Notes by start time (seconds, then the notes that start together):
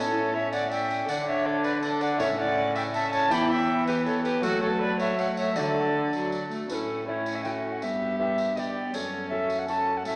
Already playing: A2 C#4 E4 A4
0.00 C#5
0.34 C#4 C#5 E5
0.53 D5 F#5, tambourine
0.71 E5 G5, tambourine
0.90 tambourine
1.05 D3 D4 A4, tambourine
1.09 D3 D4 D5 F#5
1.28 C#5 E5
1.46 A4 C#5
1.64 B4 D5, tambourine
1.82 D4 A4 D5, tambourine
2.01 D5 F#5, tambourine
2.17 A2 C#3 E4 A4 C#5, tambourine
2.21 A2 C#4 E5
2.38 D5 F#5
2.76 E5 G5, tambourine
2.94 C#4 E5 A5, tambourine
3.13 C#5 A5, tambourine
3.28 E3 B3 E4 G4 G5 B5, tambourine
3.51 E5 G5
3.86 G4 B4, tambourine
4.06 A4 C#5, tambourine
4.24 G4 B4, tambourine
4.40 F#3 A3 C#4 F#4 A4, tambourine
4.44 A3 F#4
4.62 A4 C#5
4.81 B4 D5
4.99 C#5 E5, tambourine
5.18 A3 C#5 F#5, tambourine
5.37 C#5 E5, tambourine
5.53 D3 F#3 A3 D4 F#4 A4 D5, tambourine
5.94 D3
6.13 F#3, tambourine
6.32 tambourine
6.51 A3, tambourine
6.69 A2 C#4 E4 B4, tambourine
6.74 A4
7.07 A3 C#4 E4 C#5 D5
7.26 tambourine
7.35 E5
7.44 A3 C#4 E4 F#4 G5, tambourine
7.72 F#5
7.81 G2 B3 G4 E5, tambourine
8.18 B3 D4 G4 E5
8.38 tambourine
8.56 B3 D4 G4 D5 D#5, tambourine
8.93 F#2 C#4 A4 C#5, tambourine
9.29 C#4 F#4 A4 E5
9.50 tambourine
9.59 F#5
9.67 C#4 F#4 A4 A5, tambourine
9.97 F#5
10.05 A2 C#4 A4 E5, tambourine